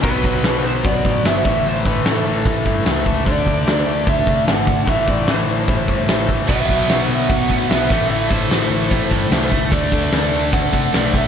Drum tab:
CC |x-------|--------|--------|--------|
HH |-ooooooo|oooooooo|oooooooo|oooooooo|
SD |--o---o-|--o---o-|--o---o-|--o---o-|
BD |oo--oo-o|-o--oo-o|oo--oo-o|oo--oo-o|

CC |x-------|--------|--------|
HH |-ooooooo|oooooooo|oooooooo|
SD |--o---o-|--o---o-|--o---o-|
BD |oo--oo-o|-o--oo-o|oo--oo-o|